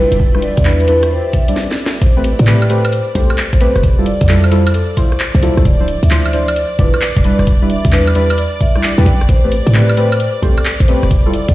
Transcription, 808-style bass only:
0.12 0.51 E1 medium
0.57 1.20 E2 medium
2.02 2.33 A1 medium
2.39 3.01 A2 medium
3.15 3.26 C2 loud
3.53 3.68 A1 medium
3.76 4.15 F1 medium
4.21 4.83 F2 medium
5.35 5.50 C2 medium
5.57 5.63 C2 loud
5.65 5.97 D1 loud
6.03 6.65 D2 medium
6.79 6.90 F1 loud
7.17 7.32 E1 medium
7.39 7.79 E1 medium
7.85 8.47 E2 medium
8.98 9.04 E2 loud
9.06 9.22 B1 loud
9.21 9.27 E1 loud
9.29 9.60 A1 medium
9.67 10.29 A2 medium
10.43 10.54 C2 loud
10.80 10.95 A1 medium
11.03 11.42 F1 medium
11.48 11.54 F2 medium

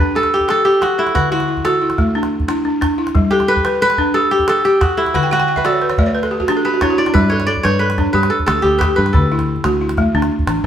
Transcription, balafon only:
0.00 0.32 D4 medium
0.00 0.32 A4 medium
0.15 0.47 G4 medium
0.48 0.64 G4 medium
0.48 0.97 A4 medium
0.65 0.80 G4 medium
0.81 1.15 G4 medium
0.98 1.32 A4 medium
1.15 1.48 D3 medium
1.32 1.47 E4 medium
1.48 1.80 E4 medium
1.65 1.98 F#4 medium
1.82 2.32 E4 medium
1.98 2.32 A3 medium
2.15 2.47 D4 medium
2.48 2.64 D4 medium
2.48 2.97 E4 medium
2.65 2.80 D4 medium
2.81 3.15 D4 medium
2.98 3.32 E4 medium
3.15 3.48 G3 medium
3.32 3.47 A4 medium
3.48 3.80 A4 medium
3.65 3.98 B4 medium
3.82 4.32 A4 medium
3.98 4.32 D4 medium
4.15 4.47 G4 medium
4.48 4.63 G4 medium
4.48 4.96 A4 medium
4.65 4.80 G4 medium
4.81 5.15 G4 medium
4.97 5.31 A4 medium
5.14 5.48 D3 medium
5.14 5.30 F#5 medium
5.23 5.38 G5 medium
5.31 5.47 F#5 medium
5.40 5.55 G5 medium
5.48 5.64 F#5 medium
5.56 5.72 E5 medium
5.64 5.98 F#4 medium
5.64 5.80 D5 medium
5.73 5.88 C#5 medium
5.82 5.97 B4 medium
5.90 6.05 C#5 medium
5.99 6.32 A3 medium
5.99 6.14 D5 medium
6.06 6.22 C#5 medium
6.15 6.30 B4 medium
6.23 6.39 A4 medium
6.31 6.47 G4 medium
6.40 6.56 F#4 medium
6.49 6.81 D4 medium
6.49 6.64 G4 medium
6.57 6.72 A4 medium
6.65 6.81 G4 medium
6.74 6.89 F#4 medium
6.82 7.06 D4 medium
6.82 6.97 E4 medium
6.90 7.06 F#4 medium
6.99 7.14 E4 medium
7.07 7.22 D4 medium
7.15 7.48 G3 medium
7.32 7.47 A4 medium
7.48 7.80 A4 medium
7.65 7.98 B4 medium
7.81 8.31 A4 medium
7.98 8.31 D4 medium
8.15 8.47 G4 medium
8.48 8.63 G4 medium
8.48 8.97 A4 medium
8.64 8.80 G4 medium
8.81 9.15 G4 medium
8.98 9.31 A4 medium
9.15 9.48 D3 medium
9.32 9.80 E4 medium
9.65 9.98 F#4 medium
9.81 10.31 E4 medium
9.98 10.31 A3 medium
10.15 10.46 D4 medium
10.48 10.63 D4 medium

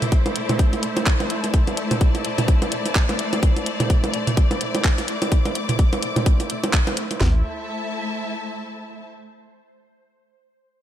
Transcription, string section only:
0.00 7.19 A3 medium
0.00 7.21 E4 medium
0.00 7.21 D5 medium
0.00 0.61 D6 medium
0.59 4.39 A5 medium
4.37 7.23 D6 medium
7.21 9.06 A3 medium
7.29 9.06 E4 medium
7.36 9.06 E5 medium
7.42 9.06 A5 medium

